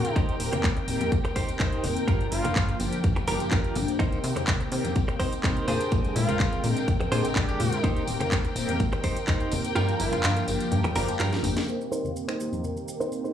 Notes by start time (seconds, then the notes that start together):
Already playing: D3 G#3 C4 G4 A#4 G5
0.04 closed hi-hat, tambourine
0.15 D#2 D#3 C4 D#4 G4 C5, kick, closed hi-hat, tambourine
0.29 closed hi-hat, tambourine
0.40 D#1, open hi-hat, tambourine
0.53 muted clean electric guitar stroke, closed hi-hat, tambourine, high conga
0.64 D#2, muted clean electric guitar stroke, kick, clap, closed hi-hat, tambourine
0.77 muted clean electric guitar stroke, closed hi-hat, tambourine
0.87 D#1 D#3 A#3 C4 G4, open hi-hat, tambourine
1.01 closed hi-hat, tambourine, low conga
1.12 D#2, kick, closed hi-hat, tambourine, high conga
1.25 muted clean electric guitar stroke, closed hi-hat, tambourine
1.36 D#1 D#4 G4 C5, kick, open hi-hat, tambourine
1.49 D#2, closed hi-hat, tambourine
1.59 D#2 D#4 G4 C5, kick, clap, closed hi-hat, tambourine
1.73 closed hi-hat
1.84 D#1, open hi-hat, tambourine, high conga
1.97 closed hi-hat, tambourine
2.07 G2 F3 A#3 D4 F4 G4 A#4, kick, closed hi-hat, tambourine
2.21 closed hi-hat, tambourine
2.32 G1 F4, open hi-hat, tambourine
2.44 G2, muted clean electric guitar stroke, closed hi-hat, tambourine, high conga
2.56 G2, muted clean electric guitar stroke, kick, clap, closed hi-hat, tambourine
2.69 muted clean electric guitar stroke, closed hi-hat
2.80 G1 F3 A#3 D4 G4, open hi-hat, tambourine
2.92 closed hi-hat, tambourine
3.04 G2, kick, closed hi-hat, tambourine, high conga
3.16 muted clean electric guitar stroke, closed hi-hat, tambourine, low conga
3.27 G1 F3 A#3 D4 F4 G4 A#4, open hi-hat, tambourine
3.40 G2, closed hi-hat, tambourine
3.51 G2 F4 G4 A#4, kick, clap, closed hi-hat, tambourine
3.64 closed hi-hat, tambourine
3.75 G1, open hi-hat, tambourine, high conga, low conga
3.88 closed hi-hat, tambourine
3.99 C2 D#3 A#3 C4 D#4 G4 A#4 C5 G5, kick, closed hi-hat, tambourine
4.12 closed hi-hat, tambourine
4.24 C3, open hi-hat, tambourine
4.36 muted clean electric guitar stroke, closed hi-hat, tambourine, high conga
4.47 C2, muted clean electric guitar stroke, kick, clap, closed hi-hat, tambourine
4.60 muted clean electric guitar stroke, closed hi-hat, tambourine
4.71 C3 D#3 A#3 C4 G4, open hi-hat, tambourine
4.84 closed hi-hat, tambourine, low conga
4.96 C2, kick, closed hi-hat, tambourine, high conga
5.08 muted clean electric guitar stroke, closed hi-hat, tambourine
5.20 C3 D#4 A#4 C5, kick, open hi-hat, tambourine
5.32 C2, closed hi-hat, tambourine
5.43 C2 D#4 A#4 C5, kick, clap, closed hi-hat, tambourine
5.57 closed hi-hat, tambourine
5.67 A#2 D4 G4 G#4 C5, open hi-hat, tambourine, high conga
5.81 closed hi-hat, tambourine
5.91 A#1 D3 G#3 C4, kick, closed hi-hat, tambourine
6.05 closed hi-hat, tambourine
6.16 A#2 F4, open hi-hat, tambourine
6.28 A#1, muted clean electric guitar stroke, closed hi-hat, tambourine, high conga
6.40 A#1, muted clean electric guitar stroke, kick, clap, closed hi-hat, tambourine
6.52 muted clean electric guitar stroke, closed hi-hat
6.64 A#2 D3 G#3 C4 G5, open hi-hat, tambourine
6.76 closed hi-hat, tambourine
6.88 A#1, kick, closed hi-hat, tambourine, high conga
7.00 muted clean electric guitar stroke, closed hi-hat, tambourine, low conga
7.11 A#2 D3 G#3 C4 D4 G4 G#4 C5 G5, open hi-hat, tambourine
7.23 A#1, closed hi-hat, tambourine
7.36 A#1 D4 G4 G#4 D5, kick, clap, closed hi-hat
7.49 G4, closed hi-hat, tambourine
7.60 A#2, open hi-hat, tambourine, high conga
7.72 closed hi-hat, tambourine
7.83 D#2 D#3 A#3 C4 D#4 G4 C5, kick, closed hi-hat, tambourine
7.96 closed hi-hat, tambourine
8.07 D#1, open hi-hat, tambourine
8.20 muted clean electric guitar stroke, closed hi-hat, tambourine, high conga
8.32 D#2, muted clean electric guitar stroke, kick, clap, closed hi-hat, tambourine
8.43 muted clean electric guitar stroke, closed hi-hat, tambourine
8.55 D#1 D#3 A#3 C4 G4, open hi-hat, tambourine
8.68 closed hi-hat, tambourine, low conga
8.80 D#2, kick, closed hi-hat, tambourine, high conga
8.93 muted clean electric guitar stroke, closed hi-hat, tambourine
9.03 D#1 D#4 G4 C5, kick, open hi-hat, tambourine
9.16 D#2, closed hi-hat, tambourine
9.27 D#2 D#4 G4 C5, kick, clap, closed hi-hat, tambourine
9.40 closed hi-hat, tambourine
9.51 D#1, open hi-hat, tambourine, high conga
9.64 closed hi-hat, tambourine
9.75 G2 F3 A#3 D4 F4 G4 A#4, closed hi-hat, tambourine
9.89 closed hi-hat, tambourine
9.99 G1 F4, open hi-hat, tambourine
10.12 G2, muted clean electric guitar stroke, closed hi-hat, tambourine, high conga
10.23 G2, muted clean electric guitar stroke, clap, closed hi-hat, tambourine
10.36 muted clean electric guitar stroke, closed hi-hat, tambourine
10.48 G1 F3 A#3 D4 G4, open hi-hat, tambourine
10.60 closed hi-hat, tambourine
10.71 G2, closed hi-hat, tambourine, high conga
10.84 muted clean electric guitar stroke, closed hi-hat, tambourine, low conga
10.95 G1 F3 A#3 D4 F4 G4 A#4, open hi-hat, tambourine
11.08 G2, closed hi-hat, tambourine
11.19 G2 F4 G4 A#4, clap, closed hi-hat, tambourine
11.32 snare, closed hi-hat, tambourine
11.43 G1, open hi-hat, tambourine, high conga, low conga
11.57 snare, closed hi-hat, tambourine
11.67 D#3 A#3 C4 G4 A#4 G5, shaker
11.81 shaker
11.92 D#4 A#4 C5, shaker
12.04 tambourine, high conga, shaker
12.16 shaker
12.28 D#4 A#4 C5, finger snap, shaker
12.39 D#3 A#3 C4 G4, shaker
12.52 tambourine, low conga, shaker
12.64 tambourine, high conga, shaker
12.77 shaker
12.88 tambourine, shaker
13.00 D#4 A#4 C5, shaker
13.12 shaker
13.24 D#4 A#4 C5, shaker